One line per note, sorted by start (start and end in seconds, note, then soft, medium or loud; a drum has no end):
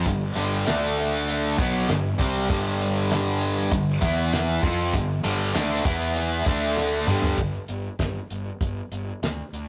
0.06 0.34 G1 medium
0.06 0.30 G2 medium
0.06 0.30 D3 medium
0.06 kick medium
0.06 closed hi-hat medium
0.36 0.64 G1 medium
0.36 0.65 G2 medium
0.36 0.65 D3 medium
0.36 0.66 G3 loud
0.36 closed hi-hat medium
0.66 1.54 D2 medium
0.66 1.57 D3 medium
0.66 1.57 A3 loud
0.66 1.57 D4 loud
0.66 snare loud
0.66 clap loud
0.66 closed hi-hat loud
0.98 closed hi-hat medium
1.29 closed hi-hat medium
1.58 1.86 B1 loud
1.58 1.88 B2 medium
1.58 1.88 F#3 loud
1.58 1.88 B3 medium
1.58 kick loud
1.58 closed hi-hat medium
1.88 2.17 G1 medium
1.88 2.13 G2 medium
1.88 2.13 D3 medium
1.88 snare loud
1.88 clap medium
1.88 closed hi-hat medium
2.19 2.47 C2 medium
2.19 2.48 C3 medium
2.19 2.49 G3 loud
2.19 2.49 C4 loud
2.19 kick loud
2.19 closed hi-hat medium
2.49 3.68 G1 medium
2.49 3.70 G2 loud
2.49 3.71 D3 loud
2.49 3.71 G3 loud
2.49 kick loud
2.49 closed hi-hat medium
2.80 closed hi-hat medium
3.11 snare loud
3.11 clap medium
3.11 closed hi-hat medium
3.42 closed hi-hat medium
3.58 snare soft
3.72 4.00 G1 medium
3.72 3.96 G2 medium
3.72 3.96 D3 medium
3.72 kick medium
3.72 closed hi-hat medium
4.01 4.59 E2 loud
4.01 4.62 E3 medium
4.01 4.62 B3 loud
4.01 4.62 E4 loud
4.01 kick loud
4.01 closed hi-hat medium
4.33 snare loud
4.33 clap medium
4.33 closed hi-hat medium
4.63 4.91 F2 medium
4.63 4.92 F3 medium
4.63 4.93 C4 loud
4.63 4.93 F4 loud
4.63 kick loud
4.63 closed hi-hat medium
4.93 5.22 G1 medium
4.93 5.18 G2 medium
4.93 5.18 D3 medium
4.93 kick medium
4.93 closed hi-hat medium
5.24 5.53 G1 loud
5.24 5.54 G2 medium
5.24 5.53 D3 medium
5.24 5.54 G3 loud
5.24 closed hi-hat medium
5.54 5.83 D2 medium
5.54 5.84 D3 medium
5.54 5.84 A3 medium
5.54 5.84 D4 loud
5.54 snare loud
5.54 clap medium
5.54 closed hi-hat loud
5.85 6.42 E2 medium
5.85 6.45 E3 medium
5.85 6.46 B3 loud
5.85 6.46 E4 loud
5.85 kick loud
5.85 closed hi-hat medium
6.16 closed hi-hat loud
6.46 7.04 D2 medium
6.46 7.06 D3 medium
6.46 7.07 A3 medium
6.46 7.07 D4 loud
6.46 kick loud
6.46 closed hi-hat medium
6.77 snare medium
6.77 clap medium
7.07 7.36 G1 medium
7.07 7.37 G2 medium
7.07 7.38 D3 loud
7.07 7.38 G3 medium
7.07 mid tom medium
7.22 floor tom medium
7.38 7.56 G1 medium
7.38 kick medium
7.38 closed hi-hat medium
7.68 7.87 G1 medium
7.68 closed hi-hat medium
7.99 8.18 G1 medium
7.99 kick medium
7.99 snare loud
7.99 closed hi-hat medium
8.30 8.49 G1 medium
8.30 closed hi-hat medium
8.61 8.79 G1 medium
8.61 kick loud
8.61 closed hi-hat medium
8.91 9.10 G1 medium
8.91 closed hi-hat medium
9.22 9.41 D2 medium
9.22 snare loud
9.22 closed hi-hat medium
9.53 9.68 D2 medium
9.53 closed hi-hat medium